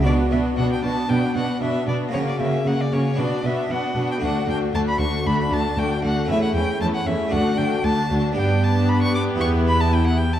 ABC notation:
X:1
M:4/4
L:1/16
Q:1/4=116
K:Bm
V:1 name="Violin"
d2 e2 f g a2 g2 f2 e2 d2 | c d e2 f d c2 d2 e2 f3 g | f2 g2 a b c'2 b2 a2 g2 f2 | e f g2 a f e2 f2 g2 a3 z |
g2 a2 b c' d'2 c'2 b a g f g a |]
V:2 name="Violin section"
F2 F2 F2 F2 F2 F2 F2 F2 | F2 F2 F2 F2 F2 F2 F2 F2 | F2 F2 F2 F2 F2 F2 F2 F2 | E2 E2 E2 E2 F2 F2 F2 F2 |
G16 |]
V:3 name="Violin section"
D2 D2 D2 D2 D2 D2 D2 D2 | C2 C2 C2 C2 D2 D2 D2 D2 | D2 D2 D2 D2 D2 D2 D2 D2 | C2 C2 C2 C2 D2 D2 D2 D2 |
D8 E8 |]
V:4 name="Viola section"
B,2 B,2 B,2 B,2 B,2 B,2 B,2 B,2 | ^A,2 A,2 A,2 A,2 B,2 B,2 B,2 B,2 | A,2 A,2 A,2 A,2 A,2 A,2 A,2 A,2 | A,2 A,2 A,2 A,2 A,2 A,2 A,2 A,2 |
B,16 |]
V:5 name="Harpsichord"
[B,DF]16 | [^A,CF]8 [B,DF]8 | [A,DF]16 | [A,CE]8 [A,DF]8 |
[B,DG]8 [B,EG]8 |]
V:6 name="Harpsichord" clef=bass
B,,2 B,,2 B,,2 B,,2 B,,2 B,,2 B,,2 B,,2 | C,2 C,2 C,2 C,2 B,,2 B,,2 B,,2 B,,2 | D,,2 D,,2 D,,2 D,,2 D,,2 D,,2 D,,2 D,,2 | E,,2 E,,2 E,,2 E,,2 D,,2 D,,2 D,,2 D,,2 |
G,,8 E,,8 |]
V:7 name="Cello section" clef=bass
B,,2 B,,2 B,,2 B,,2 B,,2 B,,2 B,,2 B,,2 | C,2 C,2 C,2 C,2 B,,2 B,,2 B,,2 B,,2 | D,,2 D,,2 D,,2 D,,2 D,,2 D,,2 D,,2 D,,2 | E,,2 E,,2 E,,2 E,,2 D,,2 D,,2 D,,2 D,,2 |
G,,8 E,,8 |]